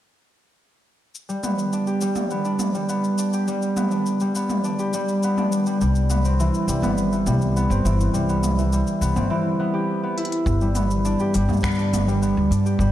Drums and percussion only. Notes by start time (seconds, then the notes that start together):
1.15 cabasa
1.29 cabasa
1.44 mid tom, cabasa
1.59 cabasa
1.73 cabasa
1.87 cabasa
2.01 cabasa
2.16 mid tom, cabasa
2.30 cabasa
2.45 cabasa
2.59 mid tom, cabasa
2.75 cabasa
2.89 cabasa
3.04 cabasa
3.18 cabasa
3.33 cabasa
3.48 cabasa
3.62 cabasa
3.77 mid tom, cabasa
3.91 cabasa
4.06 cabasa
4.20 cabasa
4.35 cabasa
4.50 mid tom, cabasa
4.64 cabasa
4.79 cabasa
4.93 cabasa
5.08 cabasa
5.23 cabasa
5.38 mid tom, cabasa
5.52 cabasa
5.66 cabasa
5.81 cabasa
5.95 cabasa
6.10 mid tom, cabasa
6.25 cabasa
6.40 cabasa
6.54 cabasa
6.69 cabasa
6.83 mid tom, cabasa
6.98 cabasa
7.12 cabasa
7.27 mid tom, cabasa
7.42 cabasa
7.57 cabasa
7.71 cabasa
7.86 cabasa
8.01 cabasa
8.14 cabasa
8.29 cabasa
8.43 mid tom, cabasa
8.58 cabasa
8.73 cabasa
8.87 cabasa
9.02 cabasa
9.16 mid tom, cabasa
10.18 closed hi-hat
10.25 closed hi-hat
10.32 closed hi-hat
10.46 kick, cabasa
10.61 cabasa
10.75 mid tom, open hi-hat, cabasa
10.91 cabasa
11.05 cabasa
11.19 cabasa
11.34 open hi-hat, cabasa
11.49 mid tom, cabasa
11.53 cabasa
11.57 cabasa
11.60 finger snap, kick, cabasa
11.64 cabasa
11.67 cabasa
11.71 cabasa
11.75 cabasa
11.79 cabasa
11.94 mid tom, open hi-hat, cabasa
12.08 cabasa
12.23 cabasa
12.52 open hi-hat, cabasa
12.66 cabasa
12.79 kick, cabasa